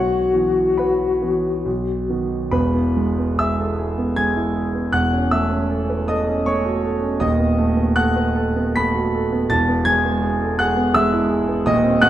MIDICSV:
0, 0, Header, 1, 3, 480
1, 0, Start_track
1, 0, Key_signature, 4, "major"
1, 0, Tempo, 875912
1, 1384, Time_signature, 3, 2, 24, 8
1, 1858, Tempo, 761421
1, 4738, Tempo, 807537
1, 5218, Tempo, 722892
1, 7428, End_track
2, 0, Start_track
2, 0, Title_t, "Grand piano"
2, 0, Program_c, 0, 0
2, 0, Note_on_c, 0, 35, 45
2, 0, Note_on_c, 0, 73, 55
2, 0, Note_on_c, 0, 78, 64
2, 0, Note_on_c, 0, 85, 78
2, 74, Control_c, 0, 64, 127
2, 176, Note_off_c, 0, 35, 0
2, 182, Note_on_c, 0, 52, 32
2, 186, Note_on_c, 0, 59, 33
2, 188, Note_on_c, 0, 66, 37
2, 405, Note_off_c, 0, 78, 0
2, 406, Note_off_c, 0, 73, 0
2, 424, Note_off_c, 0, 85, 0
2, 425, Note_on_c, 0, 83, 55
2, 434, Note_on_c, 0, 71, 44
2, 434, Note_on_c, 0, 78, 41
2, 645, Note_off_c, 0, 52, 0
2, 647, Note_off_c, 0, 59, 0
2, 648, Note_off_c, 0, 66, 0
2, 667, Note_on_c, 0, 52, 32
2, 670, Note_on_c, 0, 59, 34
2, 670, Note_on_c, 0, 66, 37
2, 883, Note_off_c, 0, 52, 0
2, 884, Note_off_c, 0, 59, 0
2, 884, Note_off_c, 0, 66, 0
2, 886, Note_off_c, 0, 78, 0
2, 887, Note_off_c, 0, 71, 0
2, 904, Note_off_c, 0, 83, 0
2, 906, Note_on_c, 0, 35, 45
2, 915, Control_c, 0, 64, 0
2, 1001, Control_c, 0, 64, 127
2, 1138, Note_off_c, 0, 35, 0
2, 1147, Note_on_c, 0, 51, 31
2, 1147, Note_on_c, 0, 59, 28
2, 1151, Note_on_c, 0, 66, 37
2, 1363, Note_off_c, 0, 51, 0
2, 1363, Note_off_c, 0, 59, 0
2, 1365, Note_off_c, 0, 66, 0
2, 1378, Note_on_c, 0, 28, 59
2, 1378, Note_on_c, 0, 83, 78
2, 1381, Note_on_c, 0, 40, 63
2, 1385, Note_on_c, 0, 71, 65
2, 1395, Control_c, 0, 64, 0
2, 1499, Control_c, 0, 64, 127
2, 1502, Note_on_c, 0, 59, 43
2, 1625, Note_on_c, 0, 56, 46
2, 1696, Note_off_c, 0, 59, 0
2, 1748, Note_on_c, 0, 59, 42
2, 1813, Note_off_c, 0, 56, 0
2, 1836, Note_off_c, 0, 71, 0
2, 1854, Note_off_c, 0, 83, 0
2, 1857, Note_on_c, 0, 88, 88
2, 1860, Note_on_c, 0, 68, 51
2, 1864, Note_on_c, 0, 76, 67
2, 1935, Note_off_c, 0, 59, 0
2, 1984, Note_on_c, 0, 69, 35
2, 2058, Note_off_c, 0, 68, 0
2, 2106, Note_off_c, 0, 69, 0
2, 2109, Note_on_c, 0, 68, 44
2, 2230, Note_on_c, 0, 59, 47
2, 2301, Note_off_c, 0, 68, 0
2, 2326, Note_off_c, 0, 76, 0
2, 2346, Note_on_c, 0, 92, 89
2, 2347, Note_off_c, 0, 88, 0
2, 2348, Note_on_c, 0, 56, 45
2, 2350, Note_on_c, 0, 80, 67
2, 2422, Note_off_c, 0, 59, 0
2, 2471, Note_on_c, 0, 64, 41
2, 2541, Note_off_c, 0, 56, 0
2, 2591, Note_on_c, 0, 68, 47
2, 2662, Note_off_c, 0, 64, 0
2, 2713, Note_on_c, 0, 59, 44
2, 2782, Note_off_c, 0, 68, 0
2, 2800, Note_off_c, 0, 28, 0
2, 2802, Note_off_c, 0, 40, 0
2, 2805, Note_off_c, 0, 80, 0
2, 2826, Note_on_c, 0, 90, 88
2, 2827, Note_on_c, 0, 28, 53
2, 2828, Note_off_c, 0, 92, 0
2, 2831, Note_off_c, 0, 59, 0
2, 2832, Note_on_c, 0, 40, 62
2, 2834, Note_on_c, 0, 78, 69
2, 2840, Control_c, 0, 64, 0
2, 2955, Note_on_c, 0, 61, 47
2, 2957, Control_c, 0, 64, 127
2, 3055, Note_off_c, 0, 78, 0
2, 3067, Note_off_c, 0, 90, 0
2, 3071, Note_on_c, 0, 88, 87
2, 3075, Note_on_c, 0, 57, 44
2, 3076, Note_on_c, 0, 76, 68
2, 3144, Note_off_c, 0, 61, 0
2, 3195, Note_on_c, 0, 61, 44
2, 3262, Note_off_c, 0, 57, 0
2, 3315, Note_on_c, 0, 69, 48
2, 3381, Note_off_c, 0, 61, 0
2, 3437, Note_on_c, 0, 71, 39
2, 3500, Note_off_c, 0, 69, 0
2, 3522, Note_off_c, 0, 76, 0
2, 3544, Note_off_c, 0, 88, 0
2, 3549, Note_off_c, 0, 71, 0
2, 3553, Note_on_c, 0, 87, 83
2, 3558, Note_on_c, 0, 69, 51
2, 3559, Note_on_c, 0, 75, 68
2, 3681, Note_on_c, 0, 61, 48
2, 3743, Note_off_c, 0, 69, 0
2, 3775, Note_off_c, 0, 75, 0
2, 3789, Note_off_c, 0, 87, 0
2, 3794, Note_on_c, 0, 85, 88
2, 3799, Note_on_c, 0, 57, 49
2, 3803, Note_on_c, 0, 73, 69
2, 3866, Note_off_c, 0, 61, 0
2, 3916, Note_on_c, 0, 66, 46
2, 3984, Note_off_c, 0, 57, 0
2, 4034, Note_on_c, 0, 69, 46
2, 4102, Note_off_c, 0, 66, 0
2, 4147, Note_on_c, 0, 61, 45
2, 4219, Note_off_c, 0, 69, 0
2, 4235, Note_off_c, 0, 28, 0
2, 4237, Note_off_c, 0, 40, 0
2, 4246, Note_off_c, 0, 73, 0
2, 4259, Note_on_c, 0, 27, 57
2, 4260, Note_on_c, 0, 87, 90
2, 4263, Note_off_c, 0, 61, 0
2, 4264, Note_on_c, 0, 39, 60
2, 4266, Note_off_c, 0, 85, 0
2, 4266, Note_on_c, 0, 75, 73
2, 4270, Control_c, 0, 64, 0
2, 4377, Note_on_c, 0, 59, 48
2, 4391, Control_c, 0, 64, 127
2, 4501, Note_on_c, 0, 57, 49
2, 4567, Note_off_c, 0, 59, 0
2, 4617, Note_on_c, 0, 59, 50
2, 4690, Note_off_c, 0, 57, 0
2, 4712, Note_off_c, 0, 75, 0
2, 4734, Note_off_c, 0, 87, 0
2, 4737, Note_on_c, 0, 90, 96
2, 4741, Note_on_c, 0, 69, 57
2, 4742, Note_on_c, 0, 78, 72
2, 4806, Note_off_c, 0, 59, 0
2, 4858, Note_on_c, 0, 71, 41
2, 4927, Note_off_c, 0, 69, 0
2, 4976, Note_on_c, 0, 69, 52
2, 4977, Note_off_c, 0, 71, 0
2, 5096, Note_on_c, 0, 59, 52
2, 5169, Note_off_c, 0, 69, 0
2, 5195, Note_off_c, 0, 78, 0
2, 5212, Note_on_c, 0, 95, 106
2, 5216, Note_off_c, 0, 90, 0
2, 5219, Note_on_c, 0, 57, 47
2, 5219, Note_on_c, 0, 83, 86
2, 5292, Note_off_c, 0, 59, 0
2, 5340, Note_on_c, 0, 66, 49
2, 5420, Note_off_c, 0, 57, 0
2, 5471, Note_on_c, 0, 69, 49
2, 5537, Note_off_c, 0, 66, 0
2, 5588, Note_on_c, 0, 59, 50
2, 5660, Note_off_c, 0, 69, 0
2, 5678, Note_off_c, 0, 27, 0
2, 5680, Note_off_c, 0, 39, 0
2, 5680, Note_off_c, 0, 83, 0
2, 5701, Note_on_c, 0, 28, 64
2, 5703, Note_off_c, 0, 95, 0
2, 5703, Note_on_c, 0, 93, 103
2, 5706, Note_off_c, 0, 59, 0
2, 5708, Note_on_c, 0, 40, 64
2, 5708, Note_on_c, 0, 81, 78
2, 5715, Control_c, 0, 64, 0
2, 5829, Note_on_c, 0, 59, 54
2, 5833, Control_c, 0, 64, 127
2, 5929, Note_off_c, 0, 81, 0
2, 5938, Note_on_c, 0, 92, 115
2, 5944, Note_off_c, 0, 93, 0
2, 5945, Note_on_c, 0, 56, 50
2, 5947, Note_on_c, 0, 80, 76
2, 6020, Note_off_c, 0, 59, 0
2, 6070, Note_on_c, 0, 59, 51
2, 6140, Note_off_c, 0, 56, 0
2, 6188, Note_on_c, 0, 68, 56
2, 6263, Note_off_c, 0, 59, 0
2, 6314, Note_on_c, 0, 69, 46
2, 6382, Note_off_c, 0, 68, 0
2, 6405, Note_off_c, 0, 80, 0
2, 6426, Note_off_c, 0, 92, 0
2, 6427, Note_on_c, 0, 90, 96
2, 6432, Note_off_c, 0, 69, 0
2, 6432, Note_on_c, 0, 68, 64
2, 6435, Note_on_c, 0, 78, 79
2, 6546, Note_on_c, 0, 59, 59
2, 6621, Note_off_c, 0, 68, 0
2, 6654, Note_off_c, 0, 78, 0
2, 6664, Note_on_c, 0, 88, 115
2, 6666, Note_off_c, 0, 90, 0
2, 6669, Note_on_c, 0, 56, 61
2, 6672, Note_on_c, 0, 76, 79
2, 6737, Note_off_c, 0, 59, 0
2, 6786, Note_on_c, 0, 64, 56
2, 6858, Note_off_c, 0, 56, 0
2, 6901, Note_on_c, 0, 68, 51
2, 6976, Note_off_c, 0, 64, 0
2, 7022, Note_on_c, 0, 59, 55
2, 7093, Note_off_c, 0, 68, 0
2, 7113, Note_off_c, 0, 28, 0
2, 7117, Note_off_c, 0, 40, 0
2, 7117, Note_off_c, 0, 76, 0
2, 7136, Note_on_c, 0, 27, 74
2, 7139, Note_on_c, 0, 87, 102
2, 7140, Note_off_c, 0, 88, 0
2, 7141, Note_off_c, 0, 59, 0
2, 7145, Note_on_c, 0, 75, 94
2, 7146, Note_on_c, 0, 39, 73
2, 7153, Control_c, 0, 64, 0
2, 7262, Control_c, 0, 64, 127
2, 7263, Note_on_c, 0, 60, 59
2, 7362, Note_off_c, 0, 75, 0
2, 7375, Note_off_c, 0, 87, 0
2, 7375, Note_on_c, 0, 90, 120
2, 7379, Note_on_c, 0, 57, 65
2, 7382, Note_on_c, 0, 78, 83
2, 7428, Note_off_c, 0, 27, 0
2, 7428, Note_off_c, 0, 39, 0
2, 7428, Note_off_c, 0, 57, 0
2, 7428, Note_off_c, 0, 60, 0
2, 7428, Note_off_c, 0, 78, 0
2, 7428, Note_off_c, 0, 90, 0
2, 7428, End_track
3, 0, Start_track
3, 0, Title_t, "Flute"
3, 0, Program_c, 1, 73
3, 0, Note_on_c, 1, 66, 56
3, 1148, Note_off_c, 1, 66, 0
3, 7428, End_track
0, 0, End_of_file